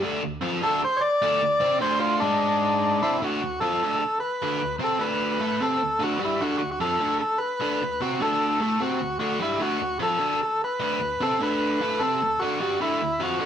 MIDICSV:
0, 0, Header, 1, 3, 480
1, 0, Start_track
1, 0, Tempo, 398671
1, 31, Time_signature, 4, 2, 24, 8
1, 16200, End_track
2, 0, Start_track
2, 0, Title_t, "Transistor combo organ"
2, 0, Program_c, 0, 18
2, 761, Note_on_c, 0, 69, 91
2, 987, Note_off_c, 0, 69, 0
2, 1015, Note_on_c, 0, 72, 95
2, 1165, Note_on_c, 0, 73, 76
2, 1200, Note_off_c, 0, 73, 0
2, 1215, Note_on_c, 0, 74, 105
2, 1234, Note_off_c, 0, 72, 0
2, 2150, Note_off_c, 0, 74, 0
2, 2189, Note_on_c, 0, 72, 92
2, 2399, Note_on_c, 0, 65, 98
2, 2420, Note_off_c, 0, 72, 0
2, 2644, Note_off_c, 0, 65, 0
2, 2649, Note_on_c, 0, 62, 91
2, 3638, Note_on_c, 0, 64, 81
2, 3819, Note_off_c, 0, 62, 0
2, 3878, Note_off_c, 0, 64, 0
2, 3904, Note_on_c, 0, 66, 78
2, 4332, Note_off_c, 0, 66, 0
2, 4338, Note_on_c, 0, 69, 86
2, 4795, Note_off_c, 0, 69, 0
2, 4810, Note_on_c, 0, 69, 80
2, 5040, Note_off_c, 0, 69, 0
2, 5056, Note_on_c, 0, 71, 87
2, 5733, Note_off_c, 0, 71, 0
2, 5824, Note_on_c, 0, 69, 86
2, 6027, Note_on_c, 0, 71, 92
2, 6052, Note_off_c, 0, 69, 0
2, 6769, Note_on_c, 0, 69, 91
2, 6770, Note_off_c, 0, 71, 0
2, 7254, Note_off_c, 0, 69, 0
2, 7266, Note_on_c, 0, 66, 89
2, 7495, Note_off_c, 0, 66, 0
2, 7523, Note_on_c, 0, 64, 74
2, 7715, Note_on_c, 0, 66, 88
2, 7743, Note_off_c, 0, 64, 0
2, 7908, Note_off_c, 0, 66, 0
2, 7923, Note_on_c, 0, 66, 87
2, 8066, Note_off_c, 0, 66, 0
2, 8081, Note_on_c, 0, 66, 70
2, 8179, Note_off_c, 0, 66, 0
2, 8200, Note_on_c, 0, 69, 91
2, 8644, Note_off_c, 0, 69, 0
2, 8671, Note_on_c, 0, 69, 91
2, 8887, Note_on_c, 0, 71, 93
2, 8896, Note_off_c, 0, 69, 0
2, 9644, Note_off_c, 0, 71, 0
2, 9649, Note_on_c, 0, 66, 86
2, 9890, Note_off_c, 0, 66, 0
2, 9898, Note_on_c, 0, 69, 96
2, 10362, Note_off_c, 0, 69, 0
2, 10376, Note_on_c, 0, 69, 79
2, 10609, Note_on_c, 0, 66, 90
2, 10614, Note_off_c, 0, 69, 0
2, 11053, Note_off_c, 0, 66, 0
2, 11068, Note_on_c, 0, 66, 90
2, 11321, Note_off_c, 0, 66, 0
2, 11342, Note_on_c, 0, 64, 75
2, 11578, Note_off_c, 0, 64, 0
2, 11580, Note_on_c, 0, 66, 96
2, 12017, Note_off_c, 0, 66, 0
2, 12071, Note_on_c, 0, 69, 96
2, 12539, Note_off_c, 0, 69, 0
2, 12554, Note_on_c, 0, 69, 90
2, 12784, Note_off_c, 0, 69, 0
2, 12812, Note_on_c, 0, 71, 96
2, 13518, Note_on_c, 0, 69, 99
2, 13527, Note_off_c, 0, 71, 0
2, 13746, Note_off_c, 0, 69, 0
2, 13760, Note_on_c, 0, 71, 99
2, 14443, Note_on_c, 0, 69, 94
2, 14480, Note_off_c, 0, 71, 0
2, 14923, Note_on_c, 0, 66, 102
2, 14934, Note_off_c, 0, 69, 0
2, 15156, Note_off_c, 0, 66, 0
2, 15170, Note_on_c, 0, 66, 84
2, 15410, Note_off_c, 0, 66, 0
2, 15433, Note_on_c, 0, 64, 91
2, 15908, Note_off_c, 0, 64, 0
2, 15933, Note_on_c, 0, 66, 91
2, 16200, Note_off_c, 0, 66, 0
2, 16200, End_track
3, 0, Start_track
3, 0, Title_t, "Overdriven electric guitar"
3, 0, Program_c, 1, 29
3, 31, Note_on_c, 1, 38, 97
3, 41, Note_on_c, 1, 50, 114
3, 251, Note_off_c, 1, 38, 0
3, 265, Note_on_c, 1, 38, 77
3, 268, Note_off_c, 1, 50, 0
3, 459, Note_off_c, 1, 38, 0
3, 497, Note_on_c, 1, 41, 96
3, 510, Note_on_c, 1, 53, 98
3, 736, Note_off_c, 1, 41, 0
3, 742, Note_off_c, 1, 53, 0
3, 744, Note_on_c, 1, 38, 94
3, 754, Note_on_c, 1, 50, 103
3, 979, Note_off_c, 1, 38, 0
3, 984, Note_off_c, 1, 50, 0
3, 1469, Note_on_c, 1, 38, 95
3, 1478, Note_on_c, 1, 50, 104
3, 1696, Note_off_c, 1, 38, 0
3, 1705, Note_off_c, 1, 50, 0
3, 1711, Note_on_c, 1, 38, 71
3, 1900, Note_off_c, 1, 38, 0
3, 1934, Note_on_c, 1, 48, 102
3, 1937, Note_on_c, 1, 60, 111
3, 2172, Note_off_c, 1, 48, 0
3, 2174, Note_off_c, 1, 60, 0
3, 2179, Note_on_c, 1, 38, 101
3, 2192, Note_on_c, 1, 50, 90
3, 2654, Note_off_c, 1, 38, 0
3, 2661, Note_off_c, 1, 50, 0
3, 2664, Note_on_c, 1, 44, 104
3, 2681, Note_on_c, 1, 56, 112
3, 3616, Note_off_c, 1, 44, 0
3, 3625, Note_off_c, 1, 56, 0
3, 3645, Note_on_c, 1, 60, 94
3, 3648, Note_on_c, 1, 48, 91
3, 3867, Note_off_c, 1, 60, 0
3, 3868, Note_off_c, 1, 48, 0
3, 3877, Note_on_c, 1, 50, 109
3, 3878, Note_on_c, 1, 38, 99
3, 4103, Note_off_c, 1, 50, 0
3, 4104, Note_off_c, 1, 38, 0
3, 4123, Note_on_c, 1, 38, 69
3, 4305, Note_off_c, 1, 38, 0
3, 4347, Note_on_c, 1, 41, 87
3, 4359, Note_on_c, 1, 53, 90
3, 4578, Note_off_c, 1, 41, 0
3, 4584, Note_off_c, 1, 53, 0
3, 4608, Note_on_c, 1, 38, 93
3, 4623, Note_on_c, 1, 50, 88
3, 4829, Note_off_c, 1, 38, 0
3, 4836, Note_off_c, 1, 50, 0
3, 5325, Note_on_c, 1, 38, 93
3, 5332, Note_on_c, 1, 50, 99
3, 5539, Note_off_c, 1, 38, 0
3, 5552, Note_off_c, 1, 50, 0
3, 5554, Note_on_c, 1, 38, 68
3, 5742, Note_off_c, 1, 38, 0
3, 5769, Note_on_c, 1, 48, 99
3, 5784, Note_on_c, 1, 60, 114
3, 6002, Note_off_c, 1, 48, 0
3, 6007, Note_on_c, 1, 38, 85
3, 6010, Note_off_c, 1, 60, 0
3, 6014, Note_on_c, 1, 50, 90
3, 6491, Note_off_c, 1, 38, 0
3, 6494, Note_off_c, 1, 50, 0
3, 6504, Note_on_c, 1, 45, 89
3, 6515, Note_on_c, 1, 57, 99
3, 6739, Note_off_c, 1, 45, 0
3, 6745, Note_off_c, 1, 57, 0
3, 6751, Note_on_c, 1, 48, 85
3, 6760, Note_on_c, 1, 60, 95
3, 6968, Note_off_c, 1, 48, 0
3, 6973, Note_on_c, 1, 38, 72
3, 6988, Note_off_c, 1, 60, 0
3, 7173, Note_off_c, 1, 38, 0
3, 7218, Note_on_c, 1, 38, 95
3, 7231, Note_on_c, 1, 50, 98
3, 7444, Note_off_c, 1, 38, 0
3, 7448, Note_on_c, 1, 43, 73
3, 7461, Note_off_c, 1, 50, 0
3, 7465, Note_on_c, 1, 55, 85
3, 7693, Note_off_c, 1, 43, 0
3, 7701, Note_off_c, 1, 55, 0
3, 7713, Note_on_c, 1, 38, 100
3, 7717, Note_on_c, 1, 50, 110
3, 7927, Note_off_c, 1, 38, 0
3, 7941, Note_on_c, 1, 38, 69
3, 7947, Note_off_c, 1, 50, 0
3, 8139, Note_off_c, 1, 38, 0
3, 8190, Note_on_c, 1, 41, 92
3, 8199, Note_on_c, 1, 53, 99
3, 8424, Note_off_c, 1, 41, 0
3, 8429, Note_off_c, 1, 53, 0
3, 8429, Note_on_c, 1, 38, 95
3, 8448, Note_on_c, 1, 50, 95
3, 8664, Note_off_c, 1, 38, 0
3, 8674, Note_off_c, 1, 50, 0
3, 9149, Note_on_c, 1, 38, 91
3, 9160, Note_on_c, 1, 50, 109
3, 9385, Note_off_c, 1, 38, 0
3, 9390, Note_off_c, 1, 50, 0
3, 9415, Note_on_c, 1, 38, 62
3, 9598, Note_off_c, 1, 38, 0
3, 9639, Note_on_c, 1, 48, 108
3, 9650, Note_on_c, 1, 60, 104
3, 9867, Note_off_c, 1, 48, 0
3, 9872, Note_on_c, 1, 38, 83
3, 9876, Note_off_c, 1, 60, 0
3, 9888, Note_on_c, 1, 50, 92
3, 10348, Note_off_c, 1, 38, 0
3, 10353, Note_on_c, 1, 45, 94
3, 10356, Note_off_c, 1, 50, 0
3, 10370, Note_on_c, 1, 57, 100
3, 10585, Note_off_c, 1, 45, 0
3, 10590, Note_on_c, 1, 48, 96
3, 10597, Note_off_c, 1, 57, 0
3, 10609, Note_on_c, 1, 60, 95
3, 10827, Note_off_c, 1, 48, 0
3, 10837, Note_off_c, 1, 60, 0
3, 10841, Note_on_c, 1, 38, 72
3, 11032, Note_off_c, 1, 38, 0
3, 11069, Note_on_c, 1, 38, 88
3, 11083, Note_on_c, 1, 50, 96
3, 11307, Note_off_c, 1, 38, 0
3, 11313, Note_on_c, 1, 43, 73
3, 11314, Note_off_c, 1, 50, 0
3, 11321, Note_on_c, 1, 55, 85
3, 11539, Note_off_c, 1, 43, 0
3, 11543, Note_on_c, 1, 38, 95
3, 11553, Note_off_c, 1, 55, 0
3, 11559, Note_on_c, 1, 50, 113
3, 11780, Note_off_c, 1, 38, 0
3, 11792, Note_off_c, 1, 50, 0
3, 11795, Note_on_c, 1, 38, 68
3, 11989, Note_off_c, 1, 38, 0
3, 12030, Note_on_c, 1, 41, 92
3, 12044, Note_on_c, 1, 53, 91
3, 12256, Note_off_c, 1, 41, 0
3, 12261, Note_on_c, 1, 38, 100
3, 12272, Note_off_c, 1, 53, 0
3, 12277, Note_on_c, 1, 50, 99
3, 12503, Note_off_c, 1, 38, 0
3, 12511, Note_off_c, 1, 50, 0
3, 13000, Note_on_c, 1, 50, 94
3, 13001, Note_on_c, 1, 38, 84
3, 13231, Note_off_c, 1, 38, 0
3, 13233, Note_off_c, 1, 50, 0
3, 13245, Note_on_c, 1, 38, 65
3, 13434, Note_off_c, 1, 38, 0
3, 13490, Note_on_c, 1, 48, 102
3, 13511, Note_on_c, 1, 60, 106
3, 13716, Note_off_c, 1, 48, 0
3, 13721, Note_on_c, 1, 38, 95
3, 13728, Note_off_c, 1, 60, 0
3, 13741, Note_on_c, 1, 50, 100
3, 14193, Note_off_c, 1, 38, 0
3, 14203, Note_off_c, 1, 50, 0
3, 14220, Note_on_c, 1, 45, 93
3, 14228, Note_on_c, 1, 57, 108
3, 14442, Note_off_c, 1, 45, 0
3, 14446, Note_off_c, 1, 57, 0
3, 14464, Note_on_c, 1, 48, 85
3, 14467, Note_on_c, 1, 60, 104
3, 14684, Note_off_c, 1, 48, 0
3, 14685, Note_off_c, 1, 60, 0
3, 14714, Note_on_c, 1, 38, 66
3, 14888, Note_off_c, 1, 38, 0
3, 14951, Note_on_c, 1, 38, 87
3, 14957, Note_on_c, 1, 50, 97
3, 15164, Note_off_c, 1, 38, 0
3, 15169, Note_on_c, 1, 43, 82
3, 15170, Note_off_c, 1, 50, 0
3, 15178, Note_on_c, 1, 55, 91
3, 15396, Note_off_c, 1, 43, 0
3, 15400, Note_off_c, 1, 55, 0
3, 15421, Note_on_c, 1, 38, 86
3, 15426, Note_on_c, 1, 50, 105
3, 15641, Note_off_c, 1, 38, 0
3, 15644, Note_off_c, 1, 50, 0
3, 15673, Note_on_c, 1, 38, 71
3, 15846, Note_off_c, 1, 38, 0
3, 15893, Note_on_c, 1, 41, 83
3, 15902, Note_on_c, 1, 53, 92
3, 16116, Note_off_c, 1, 41, 0
3, 16121, Note_off_c, 1, 53, 0
3, 16124, Note_on_c, 1, 38, 86
3, 16142, Note_on_c, 1, 50, 109
3, 16200, Note_off_c, 1, 38, 0
3, 16200, Note_off_c, 1, 50, 0
3, 16200, End_track
0, 0, End_of_file